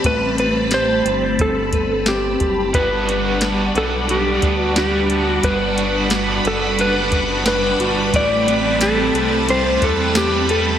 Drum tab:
HH |xxxxxxxx|xxxxxxxx|xxxxxxxx|xxxxxxxx|
TB |--------|--------|--------|--x---x-|
SD |--o---o-|--o---o-|--o---o-|--o---o-|
BD |o---oo-o|o----o--|o----o--|o----o--|